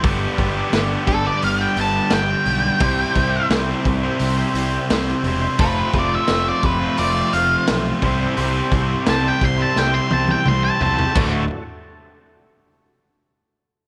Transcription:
<<
  \new Staff \with { instrumentName = "Lead electric guitar" } { \time 4/4 \key c \lydian \tempo 4 = 86 r4. a'16 d''16 f''16 g''16 a''8 g''4~ | g''4 r2. | b'8 d''16 e''8 d''16 b'8 d''8 f''8 r4 | r4 a''16 g''16 c'''16 a''16 g''16 c'''16 a''16 g''16 c'''16 a''16 a''8 |
r1 | }
  \new Staff \with { instrumentName = "Tonewheel organ" } { \time 4/4 \key c \lydian <g b d' g'>1 | <g c' e' g'>1 | <a c' f' a'>2.~ <a c' f' a'>8 <g c' e' g'>8~ | <g c' e' g'>1 |
<a d' fis' a'>8 r2. r8 | }
  \new Staff \with { instrumentName = "Overdriven electric guitar" } { \time 4/4 \key c \lydian <g, d g b d' g'>8 <g b d' g'>8 <g, d g b d' g'>16 <g b d' g'>8 <g b d' g'>8 <g b d' g'>16 <g b d' g'>8 <g, d g b d' g'>8 <g b d' g'>16 <g b d' g'>16 | <c g c' e' g' c''>8 <c' e' g' c''>8 <c g c' e' g' c''>16 <c' e' g' c''>8 <c' e' g' c''>8 <c' e' g' c''>16 <c' e' g' c''>8 <c g c' e' g' c''>8 <c' e' g' c''>16 <c' e' g' c''>16 | <f, c f a c' f'>8 <f a c' f'>8 <f, c f a c' f'>16 <f a c' f'>8 <f a c' f'>8 <f a c' f'>16 <f a c' f'>8 <f, c f a c' f'>8 <c g c' e' g' c''>16 <c' e' g' c''>16 | <c g c' e' g' c''>8 <c' e' g' c''>8 <c g c' e' g' c''>16 <c' e' g' c''>8 <c' e' g' c''>8 <c' e' g' c''>16 <c' e' g' c''>8 <c g c' e' g' c''>8 <c' e' g' c''>16 <c' e' g' c''>16 |
<d, a, d a fis'>8 r2. r8 | }
  \new Staff \with { instrumentName = "Overdriven electric guitar" } { \time 4/4 \key c \lydian <g, d g b d' g'>1 | <c g c' e' g' c''>1 | <f, c f a c' f'>2.~ <f, c f a c' f'>8 <c g c' e' g' c''>8~ | <c g c' e' g' c''>2.~ <c g c' e' g' c''>8 r8 |
<d, a, d a fis'>8 r2. r8 | }
  \new Staff \with { instrumentName = "Fingered electric bass" } { \clef bass \time 4/4 \key c \lydian g,,8 g,,8 g,,8 g,,8 g,,8 g,,8 g,,8 b,,8 | c,8 c,8 c,8 c,8 c,8 c,8 c,8 e,,8 | f,,8 f,,8 f,,8 f,,8 f,,8 f,,8 b,,8 c,8 | c,8 c,8 c,8 c,8 c,8 c,8 c,8 c,8 |
d,,8 r2. r8 | }
  \new DrumStaff \with { instrumentName = "Drums" } \drummode { \time 4/4 <hho bd>8 <hho bd>8 <hho sn>8 <hho bd>8 hho8 hho8 <hho sn>8 hho8 | <hho bd>8 <hho bd>8 <hho sn>8 <hho bd>8 hho8 hho8 <hho sn>16 sn16 hho8 | <hho bd>8 <hho bd>8 <hho sn>8 <hho bd>8 hho8 hho8 <hho sn>8 <hho bd>8 | hho8 <hho bd>8 <hho sn>8 <hho bd>8 sn8 tommh16 tommh16 toml8 tomfh16 tomfh16 |
<cymc bd>4 r4 r4 r4 | }
>>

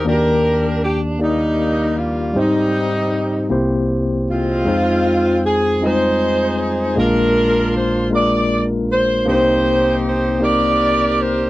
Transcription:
<<
  \new Staff \with { instrumentName = "Saxophone section" } { \time 6/8 \key ees \major \tempo 4. = 52 << { bes'4 g'8 ees'4 f'8 | ees'4. r4 f'8~ | f'4 aes'8 c''4 c''8 | bes'4 c''8 d''8 r8 c''8 |
c''4 c''8 d''4 c''8 | } \\ { <d' g'>4. <g bes>4. | <g c'>4. r4 <aes c'>8~ | <aes c'>4 r8 <ees' aes'>4. | <d' f'>4. r4. |
<ees' g'>4. <g' bes'>4. | } >> }
  \new Staff \with { instrumentName = "Tine electric piano" } { \time 6/8 \key ees \major <bes d' ges' g' d''>4 r8 <bes ees' g' d''>4 r8 | <g c' ees' g' c''>4 r8 <bes c' e' g' c''>4 r8 | <aes c' ees' f' c''>4 r8 <g aes c' ees' f' ees''>4 r8 | <aes bes d' f' bes'>4 r8 <aes bes d' f' bes'>4 r8 |
<bes c' d' ees' g' c''>4 r8 <bes c' ees' g' d''>4 r8 | }
  \new Staff \with { instrumentName = "Tine electric piano" } { \clef bass \time 6/8 \key ees \major <ees, ees>2. | aes,4. <c, c>4. | f,2. | <bes,, bes,>2. |
<c, c>2. | }
>>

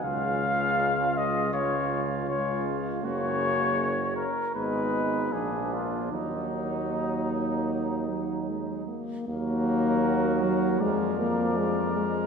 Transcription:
<<
  \new Staff \with { instrumentName = "Trumpet" } { \time 4/4 \key ees \minor \tempo 4 = 79 f''4. ees''8 des''8 r8 des''8 r8 | des''4. bes'8 ces''4 aes'8 f'8 | ees'2.~ ees'8 r8 | bes'2 d''2 | }
  \new Staff \with { instrumentName = "Trumpet" } { \time 4/4 \key ees \minor f'2 f'4 f'4 | ges'4. r8 ees'4 d'4 | ees'2.~ ees'8 r8 | ges'2 bes'2 | }
  \new Staff \with { instrumentName = "French horn" } { \clef bass \time 4/4 \key ees \minor aes2 aes4 aes4 | bes4. r8 ces'4 bes4 | bes4 bes4. ges8 aes8 bes8 | bes4. ges8 aes8 bes8 aes8 aes8 | }
  \new Staff \with { instrumentName = "Trombone" } { \clef bass \time 4/4 \key ees \minor des2 des4 des4 | des4. r8 aes4 f4 | ges2.~ ges8 r8 | ges2 f2 | }
  \new Staff \with { instrumentName = "Tuba" } { \clef bass \time 4/4 \key ees \minor des,1 | ges,,4. r8 aes,,4 bes,,4 | ees,2.~ ees,8 r8 | ees,2 f,2 | }
>>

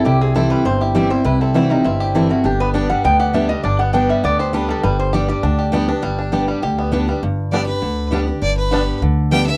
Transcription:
<<
  \new Staff \with { instrumentName = "Fiddle" } { \time 4/4 \key g \major \tempo 4 = 201 r1 | r1 | r1 | r1 |
r1 | r1 | r4 d''8 b'4. r4 | d''8 b'4. r4 g''8 e''8 | }
  \new Staff \with { instrumentName = "Resonator guitar played with a steel bar" } { \time 4/4 \key g \major g'8 aes'8 a'8 b'8 c''8 e'8 g'8 c''8 | b'8 a'8 fis'8 ees'8 e'4 a'8 fis'8 | g'8 b'8 r8 fis''8 g''8 fis''8 e''8 ees''8 | d''8 fis''8 g''8 e''8 d''8 c''8 b'8 a'8 |
b'8 c''8 d''8 d''4. r4 | r1 | r1 | r1 | }
  \new Staff \with { instrumentName = "Five-string banjo" } { \time 4/4 \key g \major <g e'>8 c'8 e'8 g8 c'8 g'8 e'8 g8 | e'8 c'8 e'8 g8 c'8 g'8 e'8 g8 | d'8 b8 d'8 g8 b8 g'8 d'8 g8 | d'8 b8 d'8 g8 b8 g'8 d'8 g8 |
g4 g'8 g8 d'8 g'8 b8 d'8 | g8 d'8 g'8 g8 g'8 b8 d'8 g8 | r4 <g b d'>8 r4. <g b d'>8 r8 | r4 <g b d'>8 r4. <g b d'>8 r8 | }
  \new Staff \with { instrumentName = "Steel-string acoustic guitar" } { \time 4/4 \key g \major << { r4 <e g c' e'>4 r4 <e g c' e'>8 <c' e'>8 | r4 <e g c' e'>8 <c' e'>8 r4 <e g c' e'>8 <c' e'>8 | r4 <g b d' g'>8 <d' g'>8 r4 <g b d' g'>8 <d' g'>8 | r4 <g b d' g'>4 r4 <g b d' g'>4 |
r4 <g b d' g'>8 <d' g'>8 r4 <g b d' g'>8 <d' g'>8 | r4 <g b d' g'>4 r4 <g b d' g'>8 <d' g'>8 | r4 <g b d' g'>8 <d' g'>8 r4 <g b d' g'>8 <d' g'>8 | r4 <g b d' g'>4 r4 <g b d' g'>8 <d' g'>8 | } \\ { c2 g,2 | c2 g,2 | g,2 d2 | g,2 d2 |
g,2 d2 | g,2 d2 | g,2 d2 | g,2 d2 | } >> }
  \new Staff \with { instrumentName = "Upright bass" } { \clef bass \time 4/4 \key g \major c,2 g,,2 | c,2 g,,2 | g,,2 d,2 | g,,2 d,2 |
g,,2 d,2 | g,,2 d,2 | g,,2 d,2 | g,,2 d,2 | }
>>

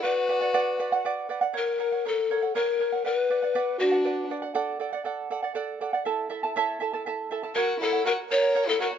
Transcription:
<<
  \new Staff \with { instrumentName = "Charango" } { \time 6/8 \key fis \phrygian \tempo 4. = 80 <b' d'' fis''>8 <b' d'' fis''>16 <d'' fis''>16 <b' d'' fis''>8 <b' d'' fis''>16 <d'' fis''>16 <b' d'' fis''>8 <b' d'' fis''>16 <d'' fis''>16 | <ais' cis'' fis''>8 <ais' cis'' fis''>16 <cis'' fis''>16 <ais' cis'' fis''>8 <ais' cis'' fis''>16 <cis'' fis''>16 <ais' cis'' fis''>8 <ais' cis'' fis''>16 <cis'' fis''>16 | <b' d'' fis''>8 <b' d'' fis''>16 <d'' fis''>16 <b' d'' fis''>8 <b' d'' fis''>16 <d'' fis''>16 <b' d'' fis''>8 <b' d'' fis''>16 <d'' fis''>16 | <a' d'' fis''>8 <a' d'' fis''>16 <d'' fis''>16 <a' d'' fis''>8 <a' d'' fis''>16 <d'' fis''>16 <a' d'' fis''>8 <a' d'' fis''>16 <d'' fis''>16 |
<e' a' e'' a''>8 <e' a' e'' a''>16 <e' a' a''>16 <e' a' cis'' e'' a''>8 <e' a' e'' a''>16 <e' a' a''>16 <e' a' e'' a''>8 <e' a' e'' a''>16 <e' a' a''>16 | <ais' cis'' fis''>8 <ais' cis'' fis''>16 <cis'' fis''>16 <ais' cis'' fis''>8 <ais' cis'' fis''>16 <cis'' fis''>16 <ais' cis'' fis''>8 <ais' cis'' fis''>16 <cis'' fis''>16 | }
  \new Staff \with { instrumentName = "Pan flute" } { \time 6/8 \key fis \phrygian b'2 r4 | ais'4 a'4 ais'4 | b'4. fis'4 r8 | r2. |
r2. | ais'8 a'8 ais'8 cis''8. a'16 ais'8 | }
  \new Staff \with { instrumentName = "Violin" } { \time 6/8 \key fis \phrygian fis'2 r4 | r2. | r4. d'4 r8 | r2. |
r2. | fis'8 e'8 fis'8 ais'8. e'16 fis'8 | }
>>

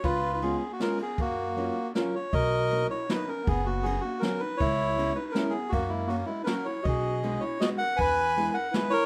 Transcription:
<<
  \new Staff \with { instrumentName = "Bandoneon" } { \time 3/4 \key fis \major \tempo 4 = 159 << { b'8. b'16 gis'8. fis'16 ais'8 gis'8 | fis'2 ais'8 cis''8 | \key b \major dis''4. cis''8 b'8 ais'8 | gis'8 fis'8 gis'8 fis'8 ais'8 b'8 |
cis''4. b'8 ais'8 gis'8 | fis'8 e'8 fis'8 e'16. b'32 ais'8 cis''8 | dis''4. cis''8 dis''8 fis''8 | gis''4. fis''8 b'8 cis''8 | } \\ { eis'4. r4. | ais2 r4 | ais'4. r4. | b4. r4. |
e'4. r4. | ais4. r4. | gis'4. r4. | b'4. r4 ais'8 | } >> }
  \new Staff \with { instrumentName = "Clarinet" } { \time 3/4 \key fis \major eis'8. dis'16 b8. ais16 cis'8 b8 | ais2 cis'8 eis'8 | \key b \major fis'4. e'8 dis'8 cis'8 | b8 ais8 b8 ais8 cis'8 dis'8 |
e'4. dis'8 cis'8 b8 | ais8 gis8 ais8 gis16. dis'32 cis'8 e'8 | fis'4. e'8 fis'8 ais'8 | b'4. ais'8 e'8 e'8 | }
  \new Staff \with { instrumentName = "Hollow-body jazz guitar" } { \time 3/4 \key fis \major r4 <gis b cis' eis'>8 r8 <gis b cis' eis'>8 r8 | r4 <fis ais cis' eis'>8 r8 <fis ais cis' eis'>8 r8 | \key b \major r4 <fis ais b dis'>8 r8 <fis ais b dis'>8 r8 | r4 <fis b cis' fis'>8 r8 <fis b cis' fis'>8 r8 |
r4 <gis b cis' e'>8 r8 <gis b cis' e'>8 r8 | r4 <fis ais cis' fis'>8 r8 <fis ais cis' fis'>8 r8 | r4 <gis b dis' fis'>8 r8 <gis b dis' fis'>8 r8 | r4 <gis b e' gis'>8 r8 <gis b e' gis'>8 r8 | }
  \new Staff \with { instrumentName = "Upright bass" } { \clef bass \time 3/4 \key fis \major cis,2 r4 | fis,2 r4 | \key b \major b,,2 r4 | fis,,2 r4 |
cis,2 r4 | fis,2 r4 | b,,2 r4 | e,2 r4 | }
  \new DrumStaff \with { instrumentName = "Drums" } \drummode { \time 3/4 <bd cymr>4 cymr4 <cymr sn>8 cymr8 | <bd cymr>4 cymr4 <cymr sn>4 | <bd cymr>4 cymr4 <cymr sn>4 | <bd cymr>4 cymr4 <cymr sn>4 |
<bd cymr>4 cymr4 <cymr sn>4 | <bd cymr>4 cymr4 <cymr sn>4 | <bd cymr>4 cymr4 <cymr sn>4 | <bd cymr>4 cymr4 <cymr sn>4 | }
>>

